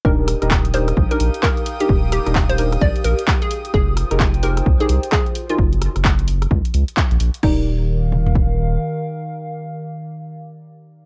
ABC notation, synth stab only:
X:1
M:4/4
L:1/16
Q:"Swing 16ths" 1/4=130
K:Eb
V:1 name="Synth stab"
[DEGB]3 [DEGB] z2 [DEGB] z2 [DEGB] z4 z [DEGB] | z3 [DEGB] z2 [DEGB] z8 z | z3 [EGAB] z2 [EGAB] z2 [EGAB] z4 z [E_GAB] | z16 |
[EGBd]16- | [EGBd]16 |]